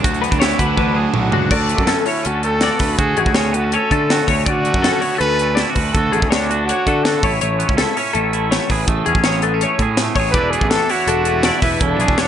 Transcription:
0.03 D2 D3 F#3 A3 D4 F#4, kick, closed hi-hat
0.14 closed hi-hat
0.21 A3 B3 D4 F#4 B4, closed hi-hat
0.31 D2 D4, kick, closed hi-hat
0.40 F#3 A3 D4 E4 F#4 C#5, snare, closed hi-hat
0.51 closed hi-hat
0.58 D2 D3 A3 D4 F#4 B4, kick, closed hi-hat
0.76 D2 D3 F#3 A3 D4 F#4 B4, kick, high tom
0.94 A3 D4 F#4 G#4
1.13 B1 A2 F#3 A3 D4 F#4, mid tom
1.31 C#2 D4 F#4, floor tom
1.51 D2 F#4 A4 D5, kick, crash
1.69 A3, closed hi-hat
1.78 F#2, kick
1.87 C#4 A4, snare, closed hi-hat
2.06 C#4 E4 C#5, open hi-hat
2.23 D2 C#4 F#4 A4, closed hi-hat
2.43 A3 A4, closed hi-hat
2.61 F#4 D5, snare, closed hi-hat
2.79 D2 A3 B4, kick, snare, open hi-hat
2.98 D2 F#4 G#4 A4, kick, closed hi-hat
3.17 A1 A3 F#4 G#4, closed hi-hat
3.26 D2, kick
3.34 C#4 G#4 C#5, snare, closed hi-hat
3.52 B3 F#4 A4, closed hi-hat
3.64 C#4
3.72 C#4 A4 C#5, closed hi-hat
3.90 D3 A3 A4, kick, closed hi-hat
4.10 F#4, snare, closed hi-hat
4.28 D2 A3 C#5, kick, open hi-hat
4.46 D2 C#4 F#4 D5, kick, closed hi-hat
4.65 A3, closed hi-hat
4.74 F#2, kick
4.82 A4, snare, closed hi-hat
4.87 C#4
5.01 C#5, open hi-hat
5.05 B3
5.15 C#4 A4
5.19 D2 B4, closed hi-hat
5.24 C#4
5.39 A3, closed hi-hat
5.55 D5, snare, closed hi-hat
5.60 E4
5.70 F#4
5.75 D2 B4, kick, open hi-hat
5.79 A3
5.92 D2 A4, kick, closed hi-hat
5.97 F#4
6.12 A1 A3 G#4, closed hi-hat
6.22 D2, kick
6.30 D4 C#5, snare, closed hi-hat
6.51 F#4 A4, closed hi-hat
6.65 D4 F#4, closed hi-hat
6.69 C#5
6.86 D3 A3 A4, kick, closed hi-hat
7.04 F#4 A4, snare, closed hi-hat
7.23 A1 A2 E4 C#5, kick, open hi-hat
7.41 A1 A3 C#5, closed hi-hat
7.59 B3, closed hi-hat
7.68 C#2 C#4, kick
7.77 E4 A4, snare, closed hi-hat
7.96 C#4 C#5, open hi-hat
8.13 A1 A3 A4, closed hi-hat
8.33 E4, closed hi-hat
8.51 A3 C#5, snare, closed hi-hat
8.70 A1 A2 G#4 B4, kick, open hi-hat
8.87 A1 A3 A4, kick, closed hi-hat
9.06 E2 C#4 G#4, closed hi-hat
9.15 A1, kick
9.24 G#4 C#5, snare, closed hi-hat
9.42 B3 A4, closed hi-hat
9.54 C#4
9.61 A3 C#5, closed hi-hat
9.79 A2 G#4, kick, closed hi-hat
9.97 snare, closed hi-hat
10.02 A3
10.16 A1 A2 C#5, kick, open hi-hat
10.20 G#4
10.31 E1 E2 B4 D5, kick, closed hi-hat
10.35 E3 A3 D4 E4
10.51 A3 G#4, closed hi-hat
10.61 A1, kick
10.70 D4 A4, snare, closed hi-hat
10.89 E4 F#4 C#5, open hi-hat
11.07 E1 D4 A4, closed hi-hat
11.25 A3, closed hi-hat
11.43 E4 D5, snare, closed hi-hat
11.62 E1 A3 E4 B4, kick, snare, open hi-hat
11.80 E1 E2 D4 E4 A4, kick, closed hi-hat
11.98 B1 A3 G#4, closed hi-hat
12.08 E1, kick
12.18 D4 C#5, snare, closed hi-hat

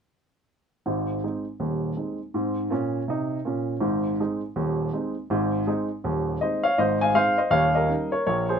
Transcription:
0.86 G#1 G#2
1.24 G#3 C4 D#4
1.60 D#1 D#2
1.97 G#3 C4 D#4
2.34 G#2 C4
2.70 A#2 C#4
3.08 C3 D#4
3.45 A#2 C#4
3.80 G#1 G#2
4.20 G#3 C4 D#4
4.56 D#1 D#2
4.93 G#3 C4 D#4
5.30 G#1 G#2
5.67 G#3 C4 D#4
6.04 D#1 D#2
6.41 G#3 C4 D#4 C5 D#5
6.63 C#5 F5
6.78 G#1 G#2 C5 D#5
7.01 F5 G#5
7.14 G#3 C4 D#4 C5 F5
7.38 C5 D#5
7.51 D#1 D#2 C#5 F5
7.75 A#4 D#5
7.89 G3 C#4 D#4
8.12 A#4 C#5
8.26 A#1 A#2 A#4 C#5
8.49 G#4 C5

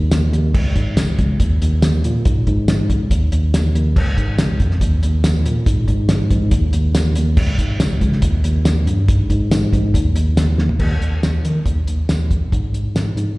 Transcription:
0.11 D#2, snare, closed hi-hat, tambourine
0.32 D#2, closed hi-hat
0.54 C#2, kick, crash
0.75 G#2, kick, closed hi-hat
0.97 C#2, snare, closed hi-hat, tambourine
1.19 C#2, kick, closed hi-hat
1.40 D#2, kick, closed hi-hat
1.62 D#2, closed hi-hat
1.82 D#2, snare, closed hi-hat, tambourine
2.04 A#2, closed hi-hat
2.25 G#2, kick, closed hi-hat
2.47 G#2, kick, closed hi-hat
2.68 G#2, snare, closed hi-hat, tambourine
2.90 C#2, kick, closed hi-hat
3.11 D#2, kick, closed hi-hat
3.32 D#2, closed hi-hat
3.54 D#2, snare, closed hi-hat, tambourine
3.75 D#2, closed hi-hat
3.96 C#2, kick, crash
4.17 G#2, kick, closed hi-hat
4.39 C#2, snare, closed hi-hat, tambourine
4.60 F2, kick, closed hi-hat
4.71 snare
4.81 D#2, kick, closed hi-hat
5.03 D#2, closed hi-hat
5.24 D#2, snare, closed hi-hat, tambourine
5.46 A#2, closed hi-hat
5.66 G#2, kick, closed hi-hat
5.88 G#2, kick, closed hi-hat
6.09 G#2, snare, closed hi-hat, tambourine
6.31 G#2, kick, closed hi-hat
6.51 D#2, kick, closed hi-hat
6.73 D#2, closed hi-hat
6.95 D#2, snare, closed hi-hat, tambourine
7.15 D#2, closed hi-hat
7.37 C#2, kick, crash
7.58 G#2, kick, closed hi-hat
7.80 C#2, snare, closed hi-hat, tambourine
8.01 C#2, kick, closed hi-hat
8.12 snare
8.22 D#2, kick, closed hi-hat
8.44 D#2, closed hi-hat
8.65 D#2, snare, closed hi-hat, tambourine
8.86 G2, closed hi-hat
9.08 G#2, kick, closed hi-hat
9.30 G#2, kick, closed hi-hat
9.51 G#2, snare, closed hi-hat, tambourine
9.73 G#2, kick, closed hi-hat
9.94 D#2, kick, closed hi-hat
10.15 D#2, closed hi-hat
10.37 D#2, snare, closed hi-hat, tambourine
10.58 D#2, snare
10.69 floor tom
10.79 D#2, kick, crash
11.01 D#2, closed hi-hat
11.23 D#2, snare, closed hi-hat, tambourine
11.45 D#3, closed hi-hat
11.66 D#2, kick, closed hi-hat
11.87 D#2, closed hi-hat
12.08 D#2, snare, closed hi-hat, tambourine
12.31 kick, closed hi-hat
12.52 G#2, kick, closed hi-hat
12.73 G#2, closed hi-hat
12.95 G#2, snare, closed hi-hat, tambourine
13.16 G#2, closed hi-hat

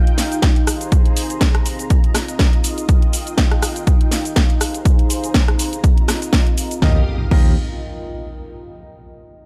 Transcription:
Already playing: D#4 F4 G4 D#5 F5 G5 A#5
0.07 closed hi-hat
0.18 snare, open hi-hat, cabasa
0.32 closed hi-hat, cabasa
0.42 kick, snare, closed hi-hat, cabasa
0.56 closed hi-hat
0.67 C4 G#4 C5 A#5, cross-stick, open hi-hat, cabasa
0.81 closed hi-hat, cabasa
0.92 kick, closed hi-hat, cabasa
1.06 closed hi-hat
1.12 G#4
1.17 open hi-hat, cabasa
1.30 closed hi-hat, cabasa
1.41 kick, snare, closed hi-hat, cabasa
1.55 cross-stick, closed hi-hat
1.66 open hi-hat, cabasa
1.79 closed hi-hat, cabasa
1.90 D#4 F4 D#5, kick, closed hi-hat, cabasa
2.04 closed hi-hat
2.15 cross-stick, snare, open hi-hat, cabasa
2.28 A#4, closed hi-hat, cabasa
2.35 F5
2.39 kick, snare, open hi-hat, cabasa
2.53 closed hi-hat
2.64 open hi-hat, cabasa
2.78 closed hi-hat, cabasa
2.89 G5, kick, closed hi-hat, cabasa
3.02 closed hi-hat
3.13 open hi-hat, cabasa
3.27 closed hi-hat, cabasa
3.33 G4
3.38 kick, snare, closed hi-hat, cabasa
3.51 cross-stick, closed hi-hat
3.62 cross-stick, open hi-hat, cabasa
3.76 closed hi-hat, cabasa
3.87 kick, closed hi-hat, cabasa
4.01 closed hi-hat
4.12 snare, open hi-hat, cabasa
4.25 closed hi-hat, cabasa
4.36 kick, snare, closed hi-hat, cabasa
4.50 closed hi-hat
4.61 C4 G#4 C5 A#5, cross-stick, open hi-hat, cabasa
4.74 closed hi-hat, cabasa
4.85 kick, closed hi-hat, cabasa
4.99 A#5, closed hi-hat
5.09 G#4, open hi-hat, cabasa
5.17 D#5
5.24 closed hi-hat, cabasa
5.34 kick, snare, closed hi-hat, cabasa
5.48 cross-stick, closed hi-hat
5.59 open hi-hat, cabasa
5.73 closed hi-hat, cabasa
5.84 F4 D#5, kick, closed hi-hat, cabasa
5.98 closed hi-hat
6.08 cross-stick, snare, open hi-hat, cabasa
6.22 closed hi-hat, cabasa
6.33 kick, snare, open hi-hat, cabasa
6.47 closed hi-hat
6.58 open hi-hat, cabasa
6.71 closed hi-hat, cabasa
6.82 D#2 D#4 F4 G4 A#4 D#5 F5 D#6, kick, snare, impact
6.90 A#4
6.98 D#5
7.05 G5
7.31 D#2 D#4 F4 G4 A#4 D#5, kick, crash

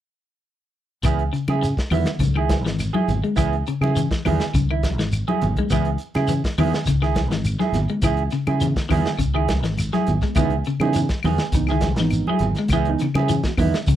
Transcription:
1.03 C#2 E3 B3 E4 G#4, kick, closed hi-hat, claves, shekere
1.19 closed hi-hat
1.33 C#3, closed hi-hat, shekere
1.48 C#3 E4 G#4, closed hi-hat, high conga, claves
1.62 muted clean electric guitar stroke, closed hi-hat, shekere
1.77 kick, snare, closed hi-hat
1.90 E2 D#3 B3 E4, muted clean electric guitar stroke, open hi-hat, high conga, low conga, claves, shekere
2.05 snare, closed hi-hat
2.19 C#2 C#3, kick, closed hi-hat, high conga, shekere
2.35 D#3 E4 G#4, claves
2.49 kick, snare, closed hi-hat, high conga, shekere
2.64 G#1 E3, snare, closed hi-hat
2.79 snare, closed hi-hat, claves, shekere
2.93 F#3 E4 G#4, high conga
3.08 G#1, closed hi-hat, low conga, shekere
3.24 G#3, closed hi-hat
3.36 C#2 E3 B3 E4 G#4, kick, closed hi-hat, claves, shekere
3.53 closed hi-hat
3.67 C#3, closed hi-hat, shekere
3.81 C#3 E4 G#4, closed hi-hat, high conga, claves
3.96 E3, closed hi-hat, shekere
4.11 kick, snare, closed hi-hat
4.25 E2 D#3 B3 E4 G#4, kick, open hi-hat, high conga, low conga, claves, shekere
4.40 snare, closed hi-hat
4.54 C#2 C#3, kick, closed hi-hat, high conga, shekere
4.71 D#3 E4, claves
4.83 kick, snare, closed hi-hat, high conga, shekere
4.98 G#1 E3, snare, closed hi-hat
5.12 closed hi-hat, claves, shekere
5.28 F#3 E4 G#4, closed hi-hat, high conga
5.41 G#1, closed hi-hat, low conga, shekere
5.56 G#3, kick, closed hi-hat, high conga
5.70 C#2 E3 B3 E4 G#4, kick, closed hi-hat, claves, shekere
5.85 closed hi-hat
5.98 closed hi-hat, shekere
6.14 C#3 E4 G#4, snare, closed hi-hat, high conga, claves
6.28 E3, closed hi-hat, shekere
6.44 kick, snare, closed hi-hat
6.58 E2 D#3 B3 E4 G#4, open hi-hat, high conga, low conga, claves, shekere
6.74 snare, closed hi-hat
6.86 C#2 C#3, kick, snare, closed hi-hat, shekere
7.02 D#3 E4 G#4, snare, claves
7.15 kick, snare, closed hi-hat, high conga, shekere
7.30 G#1 E3, snare, closed hi-hat
7.45 closed hi-hat, claves, shekere
7.59 F#3 E4 G#4, snare, high conga
7.72 G#1, snare, closed hi-hat, low conga, shekere
7.89 G#3, closed hi-hat
8.02 C#2 E3 E4 G#4, muted clean electric guitar stroke, kick, closed hi-hat, claves, shekere
8.17 closed hi-hat
8.30 C#3, snare, closed hi-hat, shekere
8.47 C#3 E4 G#4, closed hi-hat, high conga, claves
8.60 E3, closed hi-hat, low conga, shekere
8.76 kick, snare, closed hi-hat
8.89 E2 D#3 B3 E4 G#4, kick, open hi-hat, high conga, low conga, claves, shekere
9.05 snare, closed hi-hat
9.18 C#2 C#3, kick, closed hi-hat, shekere
9.34 D#3 E4 G#4, claves
9.48 kick, snare, closed hi-hat, high conga, shekere
9.63 G#1 E3, snare, closed hi-hat
9.77 snare, closed hi-hat, claves, shekere
9.93 F#3 E4 G#4, snare, closed hi-hat, high conga
10.06 G#1, closed hi-hat, low conga, shekere
10.21 G#3, kick, snare, closed hi-hat
10.35 C#2 E3 B3 D#4 E4 G#4, kick, closed hi-hat, low conga, claves, shekere
10.50 closed hi-hat
10.64 C#3, closed hi-hat, shekere
10.80 C#3 E3 B3 D#4 E4 G#4, closed hi-hat, high conga, claves
10.93 E3, closed hi-hat, shekere
11.09 kick, snare, closed hi-hat
11.23 E2 D#3 B3 G#4, muted clean electric guitar stroke, open hi-hat, high conga, low conga, claves, shekere
11.38 snare, closed hi-hat
11.52 C#2 C#3 E3 B3 D#4, kick, closed hi-hat, shekere
11.67 E4 G#4, snare, claves
11.71 D#3
11.81 kick, snare, closed hi-hat, high conga, shekere
11.96 G#1 E3 B3 D#4, snare, closed hi-hat
12.10 closed hi-hat, claves, shekere
12.27 F#3 E4 G#4, high conga
12.39 G#1, closed hi-hat, low conga, shekere
12.55 G#3, snare, closed hi-hat
12.68 C#2, kick, closed hi-hat, claves, shekere
12.72 E3 B3 E4 G#4
12.85 E3 B3, closed hi-hat
12.89 D#4
12.99 C#3, snare, closed hi-hat, shekere
13.14 C#3 E4 G#4, closed hi-hat, high conga, claves
13.28 E3, closed hi-hat, shekere
13.43 B3, kick, snare, closed hi-hat
13.47 F#4
13.57 E2 D#3 E3 B3 E4, kick, open hi-hat, high conga, low conga, claves, shekere
13.62 D#4
13.74 snare, closed hi-hat
13.87 C#2 C#3, kick, closed hi-hat, high conga, shekere

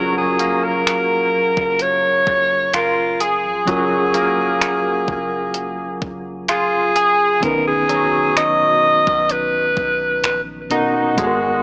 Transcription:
Already playing: F#1 F#3 C#4 F4 F#4 G#4 A#4
0.17 G#4
0.39 A#3, closed hi-hat
0.64 A#4
0.86 F1, finger snap, closed hi-hat
1.57 F#1, kick
1.79 C#5, closed hi-hat
2.27 F#1, kick
2.73 F#1 F4 A#4, finger snap, closed hi-hat
3.20 G#4, closed hi-hat
3.44 A#1
3.65 F#1 F#3 C#4 F4 G#4, kick, closed hi-hat
3.70 A#4
4.14 A#3, closed hi-hat
4.62 finger snap, closed hi-hat
5.08 F#1, kick
5.54 closed hi-hat
6.02 F#1, kick
6.48 F4 G#4, finger snap, closed hi-hat
6.96 G#4, closed hi-hat
7.40 B1 D#3 B3 C#4 D#4 A#4, kick, closed hi-hat
7.45 B4
7.67 G#4
7.89 F#3, closed hi-hat
8.37 D#5, finger snap, closed hi-hat
8.60 B2
9.07 B1, kick
9.29 B4, closed hi-hat
9.77 B1, kick
10.24 A#1 B4, finger snap, closed hi-hat
10.70 B2 B3 C#4 D#4 F#4 A#4, closed hi-hat
11.15 G#1 G#2 G#3 B3 F#4, kick, closed hi-hat
11.20 A4
11.27 A#4

